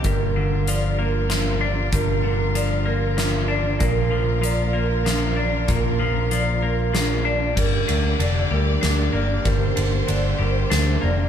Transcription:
Already playing: G3 A#3 G4
0.04 G1 G2 D3 F4 A#4, kick, closed hi-hat
0.36 D3
0.67 F3 D5, closed hi-hat
0.99 A#3 A#4
1.29 F3, snare, closed hi-hat
1.61 D4 D5
1.92 G1 G2 A#4, kick, closed hi-hat
2.24 D3
2.55 F3 D5, closed hi-hat
2.86 A#3 A#4
3.17 F3, snare, closed hi-hat
3.48 D4 D5
3.79 A#1 A#2 A#3 A#4, kick, closed hi-hat
4.11 F3
4.42 F3 D5, closed hi-hat
4.73 A#3 A#4
5.05 F3, snare, closed hi-hat
5.36 D4 D5
5.68 A#1 A#2 A#4, kick, closed hi-hat
5.99 F3
6.31 F3 D5, closed hi-hat
6.62 A#3 A#4
6.93 F3, snare, closed hi-hat
7.25 D4 D5
7.55 G1 G2 D3 A#3 G4 A#4 D5, kick, crash
7.88 D2 D3, ride
8.19 F1 D3 D5, ride
8.51 D2 G3 A#4
8.81 D2 D4, snare, ride
9.13 G1 A#3 D5
9.44 G1 G2 A#4 C5, kick, ride
9.76 G1 D3, ride
10.07 G1 D3 D5, ride
10.39 G1 G3 A#4
10.70 D2 D4, snare, ride
11.01 F1 A#3 D5

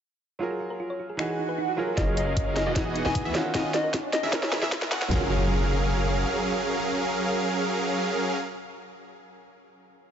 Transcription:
0.39 F#3 F4 G#4 A#4
0.51 G#4
0.60 F4
0.70 A#4
0.80 F4
0.90 C#5
1.00 F4
1.09 G#4
1.17 E3 D#4 F#4 G#4, finger snap, swell
1.29 G#4
1.39 D#4
1.49 B4
1.58 D#4
1.68 F#4
1.77 F#3 F4 G#4 A#4
1.88 A#4
1.96 F#1 F#3 C#4 F4 G#4 A#4 D#5 F5, kick, snare, closed hi-hat, riser
2.00 A#4
2.07 G#4
2.17 F4 D#5, closed hi-hat
2.27 A#4
2.36 F4, kick, closed hi-hat
2.47 C#5
2.56 F4 D#5, snare, closed hi-hat
2.66 E1 E3 B3 F#4 G#4 D#5
2.74 E3 D#4 F#4, kick, snare, closed hi-hat
2.78 G#4
2.86 G#4
2.95 D#4 F#5, closed hi-hat
3.05 E1 E3 B3 F#4 G#4 B4 D#5 G#5, snare
3.15 D#4, kick, closed hi-hat
3.25 E2 E3 B3 F#4 G#4 E5
3.33 D#3 C#4 D#4 F4, snare, closed hi-hat
3.37 F#4
3.45 A#4
3.54 D#1 D#3 C#4 D#4 F4 F#4 D#5 G#5, kick, snare, closed hi-hat
3.64 F#4
3.74 D#4 D#5, snare, closed hi-hat
3.84 A#4
3.93 D#4, kick, snare, closed hi-hat
4.03 C#5
4.13 D#4 D#5, snare, closed hi-hat
4.23 E1 E3 C#4 F#4 G#4 A#4 E5
4.31 E3 C#4 D#4 E4, kick, snare, closed hi-hat
4.35 A#4
4.43 C#5, snare
4.52 E4, snare, closed hi-hat
4.62 E2 E3 C#4 G#4 A#4 E5, snare
4.72 kick, snare, closed hi-hat
4.82 A#4, snare
4.92 E2 E3 C#4 E4 G#4 A#4 F#5, snare, closed hi-hat
5.02 C#5, snare
5.08 F#1 F#3 C#4 F4 G#4 A#4 F5, kick, snare, impact
5.14 A#4

